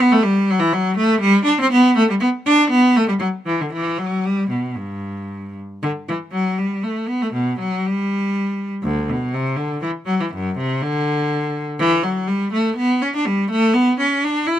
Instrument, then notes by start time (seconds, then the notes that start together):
cello
0.00 B3
0.12 A3
0.23 G3
0.51 F#3
0.60 E3
0.73 F#3
0.97 A3
1.21 G3
1.45 D4
1.61 C4
1.72 B3
1.97 A3
2.10 G3
2.20 B3
2.46 D4
2.70 B3
2.96 A3
3.08 G3
3.20 F#3
3.46 E3
3.61 D3
3.73 E3
3.98 F#3
4.25 G3
4.50 B2
4.76 G2
5.83 D3
6.09 E3
6.32 F#3
6.58 G3
6.84 A3
7.07 B3
7.22 A3
7.33 B2
7.59 F#3
7.85 G3
8.84 D2
9.09 B2
9.34 C3
9.56 D3
9.82 E3
10.06 F#3
10.20 E3
10.34 F#2
10.58 C3
10.83 D3
11.79 E3
12.03 F#3
12.27 G3
12.53 A3
12.76 B3
13.02 C#4
13.16 D4
13.26 G3
13.51 A3
13.74 B3
14.00 C#4
14.24 D4
14.47 E4